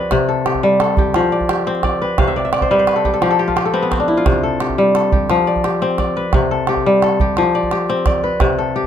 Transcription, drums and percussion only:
0.11 calabash thump, calabash click
0.46 calabash click
0.54 calabash thump
0.80 calabash click
0.97 calabash thump
1.14 calabash click
1.32 calabash click
1.41 calabash thump
1.49 calabash click
1.67 calabash click
1.75 calabash click
1.83 calabash thump, calabash click
2.18 calabash thump, calabash click
2.53 calabash click
2.61 calabash thump, calabash click
2.79 calabash click
2.87 calabash click
3.05 calabash thump
3.22 calabash click
3.40 calabash click
3.49 calabash thump
3.57 calabash click
3.92 calabash thump, calabash click
4.26 calabash thump, calabash click
4.60 calabash click
4.69 calabash thump
4.95 calabash click
5.12 calabash thump
5.30 calabash click
5.47 calabash click
5.56 calabash thump
5.64 calabash click
5.81 calabash click
5.91 calabash click
5.98 calabash thump, calabash click
6.33 calabash thump, calabash click
6.67 calabash click
6.76 calabash thump
7.02 calabash click
7.20 calabash thump
7.37 calabash click
7.54 calabash click
7.63 calabash thump
7.71 calabash click
7.89 calabash click
7.97 calabash click
8.06 calabash thump, calabash click
8.40 calabash thump, calabash click
8.84 calabash thump

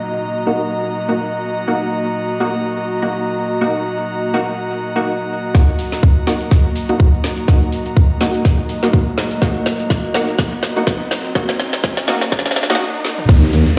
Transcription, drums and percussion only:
5.55 kick, snare, closed hi-hat, shaker
5.69 shaker
5.79 open hi-hat, shaker
5.92 snare, closed hi-hat, shaker
6.03 kick, closed hi-hat, shaker
6.17 shaker
6.27 snare, open hi-hat, shaker
6.41 closed hi-hat, shaker
6.51 kick, snare, closed hi-hat, shaker
6.65 shaker
6.76 open hi-hat, shaker
6.89 closed hi-hat, shaker
7.00 kick, closed hi-hat, shaker
7.14 shaker
7.24 snare, open hi-hat, shaker
7.38 closed hi-hat, shaker
7.48 kick, snare, closed hi-hat, shaker
7.62 shaker
7.72 open hi-hat, shaker
7.86 closed hi-hat, shaker
7.97 kick, closed hi-hat, shaker
8.10 shaker
8.21 snare, open hi-hat, shaker
8.34 closed hi-hat, shaker
8.45 kick, snare, closed hi-hat, shaker
8.59 shaker
8.69 open hi-hat, shaker
8.83 snare, closed hi-hat, shaker
8.93 kick, closed hi-hat, shaker
9.07 shaker
9.18 snare, open hi-hat, shaker
9.31 closed hi-hat, shaker
9.42 kick, snare, closed hi-hat, shaker
9.56 shaker
9.66 snare, open hi-hat, shaker
9.80 closed hi-hat, shaker
9.90 kick, snare, closed hi-hat, shaker
10.04 shaker
10.14 snare, open hi-hat, shaker
10.28 closed hi-hat, shaker
10.39 kick, snare, closed hi-hat, shaker
10.53 shaker
10.63 snare, open hi-hat, shaker
10.76 closed hi-hat, shaker
10.87 kick, snare, closed hi-hat, shaker
11.01 shaker
11.11 snare, open hi-hat, shaker
11.25 closed hi-hat, shaker
11.35 kick, snare, closed hi-hat, shaker
11.49 snare, shaker
11.60 snare, open hi-hat, shaker
11.73 snare, closed hi-hat, shaker
11.84 kick, snare, closed hi-hat, shaker
11.97 snare, shaker
12.08 snare, open hi-hat, shaker
12.21 snare, closed hi-hat, shaker
12.32 kick, snare, closed hi-hat, shaker
12.39 snare
12.46 snare, shaker
12.51 snare
12.56 snare, open hi-hat, shaker
12.63 snare
12.70 snare, closed hi-hat, shaker
12.75 snare
13.05 snare
13.18 mid tom
13.29 kick, closed hi-hat, shaker
13.43 shaker
13.53 open hi-hat, shaker
13.67 closed hi-hat, shaker

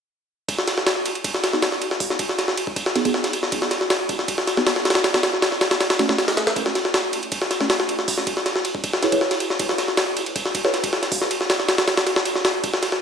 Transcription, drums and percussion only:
0.49 kick, ride
0.59 snare
0.68 snare, ride
0.78 snare
0.87 snare, ride
1.06 ride
1.15 ride
1.24 kick, ride
1.34 snare
1.44 snare, ride
1.53 snare
1.62 snare, ride
1.72 snare
1.82 ride
1.91 snare
2.00 kick, open hi-hat
2.10 snare
2.19 kick, ride
2.29 snare
2.39 snare, ride
2.48 snare
2.57 ride
2.67 kick
2.76 kick, ride
2.86 snare
2.96 snare, ride
3.05 kick, ride
3.14 snare
3.24 snare, ride
3.33 ride
3.43 snare
3.52 kick, ride
3.62 snare
3.71 snare, ride
3.81 snare
3.90 snare, ride
4.09 kick, ride
4.19 snare
4.28 kick, ride
4.38 snare
4.47 snare, ride
4.57 snare
4.67 snare, ride
4.76 snare
4.85 snare, ride
4.90 snare, ride
4.95 snare, ride
5.04 snare, ride
5.14 snare, ride
5.23 snare, ride
5.33 snare
5.42 snare, ride
5.52 snare
5.61 snare, ride
5.71 snare, ride
5.81 snare, ride
5.90 snare, ride
5.99 snare, ride
6.09 snare
6.18 snare, ride
6.28 snare, ride
6.37 snare, ride
6.47 snare, ride
6.56 kick, ride
6.66 snare
6.75 snare, ride
6.85 snare
6.94 snare, ride
7.13 ride
7.23 ride
7.32 kick, ride
7.42 snare
7.51 snare, ride
7.61 snare
7.70 snare, ride
7.80 snare
7.89 ride
7.99 snare
8.08 kick, open hi-hat
8.18 snare
8.27 kick, ride
8.37 snare
8.46 snare, ride
8.56 snare
8.65 ride
8.75 kick
8.84 kick, ride
8.93 snare
9.03 snare, ride
9.12 kick, ride
9.21 snare
9.31 snare, ride
9.40 ride
9.50 snare
9.59 kick, ride
9.69 snare
9.78 snare, ride
9.88 snare
9.97 snare, ride
10.17 ride
10.26 ride
10.36 kick, ride
10.46 snare
10.55 kick, ride
10.65 snare
10.74 snare, ride
10.84 kick, ride
10.93 snare
11.03 snare, ride
11.12 kick, open hi-hat
11.22 snare
11.31 ride
11.41 snare
11.50 snare, ride
11.60 snare
11.69 snare, ride
11.78 snare, ride
11.88 snare, ride
11.97 snare, ride
12.07 snare, ride
12.16 snare
12.25 ride
12.36 snare
12.45 snare, ride
12.64 kick, ride
12.74 snare
12.83 snare, ride
12.92 snare

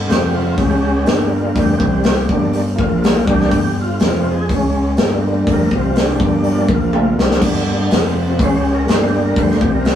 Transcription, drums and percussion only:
0.10 snare, open hi-hat
0.58 kick, open hi-hat
1.06 snare, open hi-hat
1.56 kick, open hi-hat
1.80 kick
2.04 snare, open hi-hat
2.29 kick
2.53 open hi-hat
2.79 kick
3.04 snare, open hi-hat
3.27 kick
3.41 snare
3.51 kick, open hi-hat
4.00 snare, open hi-hat
4.49 kick, open hi-hat
4.97 snare, open hi-hat
5.47 kick, open hi-hat
5.71 kick
5.96 snare, open hi-hat
6.20 kick
6.44 open hi-hat
6.69 kick
6.93 high tom
7.19 snare
7.31 snare
7.42 kick, open hi-hat, crash
7.56 snare
7.91 snare, open hi-hat
8.39 kick, open hi-hat
8.88 snare, open hi-hat
9.36 kick, open hi-hat
9.51 snare
9.61 kick
9.85 snare, open hi-hat

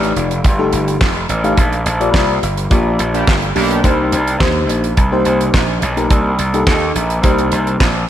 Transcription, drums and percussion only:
0.03 closed hi-hat
0.17 closed hi-hat
0.31 closed hi-hat
0.44 kick, closed hi-hat
0.73 closed hi-hat
0.88 closed hi-hat
1.01 kick, snare, clap
1.29 closed hi-hat
1.44 closed hi-hat
1.57 kick, closed hi-hat
1.73 closed hi-hat
1.86 closed hi-hat
2.01 closed hi-hat
2.14 kick, snare, clap
2.43 closed hi-hat
2.57 closed hi-hat
2.71 kick, closed hi-hat
2.99 closed hi-hat
3.14 closed hi-hat
3.28 kick, snare, clap
3.42 closed hi-hat
3.56 open hi-hat
3.71 closed hi-hat
3.84 kick, closed hi-hat
4.12 closed hi-hat
4.27 closed hi-hat
4.40 kick, snare, clap
4.69 closed hi-hat
4.84 closed hi-hat
4.97 kick, closed hi-hat
5.25 closed hi-hat
5.41 closed hi-hat
5.54 kick, snare, clap
5.82 closed hi-hat
5.97 closed hi-hat
6.10 kick, closed hi-hat
6.39 closed hi-hat
6.54 closed hi-hat
6.67 kick, snare, clap
6.96 closed hi-hat
7.10 closed hi-hat
7.24 kick, closed hi-hat
7.38 closed hi-hat
7.52 closed hi-hat
7.67 closed hi-hat
7.80 kick, snare, clap

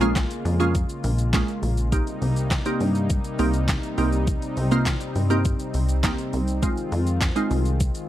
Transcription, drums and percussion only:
0.01 closed hi-hat, shaker
0.15 kick, snare, clap, closed hi-hat, shaker
0.31 closed hi-hat, shaker
0.46 open hi-hat, shaker
0.60 closed hi-hat, shaker
0.75 kick, closed hi-hat, shaker
0.90 closed hi-hat, shaker
1.04 open hi-hat, shaker
1.19 closed hi-hat, shaker
1.33 kick, snare, clap, closed hi-hat, shaker
1.48 closed hi-hat, shaker
1.63 open hi-hat, shaker
1.77 closed hi-hat, shaker
1.92 kick, closed hi-hat, shaker
2.07 closed hi-hat, shaker
2.22 open hi-hat, shaker
2.36 closed hi-hat, shaker
2.50 kick, snare, clap, closed hi-hat, shaker
2.66 closed hi-hat, shaker
2.81 open hi-hat, shaker
2.95 closed hi-hat, shaker
3.10 kick, closed hi-hat, shaker
3.25 closed hi-hat, shaker
3.39 open hi-hat, shaker
3.54 closed hi-hat, shaker
3.68 kick, snare, clap, closed hi-hat, shaker
3.83 closed hi-hat, shaker
3.98 open hi-hat, shaker
4.13 closed hi-hat, shaker
4.27 kick, closed hi-hat, shaker
4.42 closed hi-hat, shaker
4.57 open hi-hat, shaker
4.71 closed hi-hat, shaker
4.85 kick, snare, clap, closed hi-hat, shaker
5.01 closed hi-hat, shaker
5.16 open hi-hat, shaker
5.30 closed hi-hat, shaker
5.45 kick, closed hi-hat, shaker
5.60 closed hi-hat, shaker
5.74 open hi-hat, shaker
5.89 closed hi-hat, shaker
6.03 kick, snare, clap, closed hi-hat, shaker
6.18 closed hi-hat, shaker
6.33 open hi-hat, shaker
6.48 closed hi-hat, shaker
6.63 kick, closed hi-hat, shaker
6.78 closed hi-hat, shaker
6.92 open hi-hat, shaker
7.07 closed hi-hat, shaker
7.21 kick, snare, clap, closed hi-hat, shaker
7.36 closed hi-hat, shaker
7.51 open hi-hat, shaker
7.66 closed hi-hat, shaker
7.80 kick, closed hi-hat, shaker
7.95 closed hi-hat, shaker

